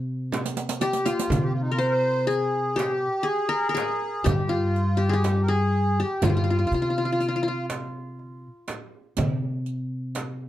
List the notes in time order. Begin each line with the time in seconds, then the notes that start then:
Already playing: C3
0.32 riq, darbuka tek, frame drum
0.46 riq
0.57 riq
0.69 riq
0.80 G4, riq
0.93 riq
1.05 F4, riq
1.19 riq
1.30 C3, riq, frame drum, darbuka dum
1.43 G4
1.52 F4
1.61 D#4
1.70 F4 A#4
1.78 C5, riq
1.86 A#4
1.92 C5
2.27 G#4, riq
2.76 G4, riq, darbuka tek, frame drum
2.84 G#4
2.90 G4
3.23 G#4
3.28 darbuka ka
3.49 A#4
3.69 A#4
3.75 G#4, riq, darbuka tek, frame drum
4.24 G2 G4, riq, frame drum, darbuka dum
4.42 G4
4.47 F4
4.76 riq
4.97 G4
5.09 G4 G#4
5.13 G4
5.24 riq, darbuka tek, frame drum
5.41 A#4
5.48 G#4
5.99 G4
6.22 G2 F4, riq, darbuka dum, frame drum
6.30 F4
6.37 F4
6.44 F4
6.50 F4
6.59 F4
6.67 F4
6.71 C3 F4, riq
6.82 F4
6.90 F4
6.98 F4
7.05 F4
7.12 F4
7.20 F4, riq
7.28 F4
7.36 F4
7.43 F4
7.48 F4
7.70 riq, darbuka tek, frame drum
8.19 darbuka ka
8.68 riq, darbuka tek, frame drum
9.17 C3, riq, darbuka dum, frame drum
9.66 riq
10.15 riq, darbuka tek, frame drum